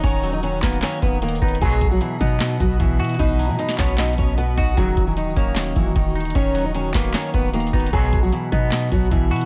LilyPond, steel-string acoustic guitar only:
\new Staff \with { instrumentName = "Steel-string acoustic guitar" } { \time 4/4 \key ees \phrygian \tempo 4 = 152 <des' des''>8. <ees' ees''>16 <des' des''>8 <ces' ces''>8 <des' des''>8 <ces' ces''>8 <bes bes'>8 <ces' ces''>8 | <aes aes'>8. <fis fis'>16 <fes fes'>8 <dis' dis''>4 <fis fis'>8 <fes fes'>4 | <dis' dis''>8. <fes fes'>16 <dis' dis''>8 <des' des''>8 <dis' dis''>8 <des' des''>8 <b b'>8 <dis' dis''>8 | <ges ges'>8. <fes fes'>16 <ees' ees''>8 <des' des''>4 <fes fes'>8 <ees' ees''>4 |
<des' des''>8. <ees' ees''>16 <des' des''>8 <ces' ces''>8 <des' des''>8 <ces' ces''>8 <bes bes'>8 <ces' ces''>8 | <aes aes'>8. <fis fis'>16 <fes fes'>8 <dis' dis''>4 <fis fis'>8 <fes fes'>4 | }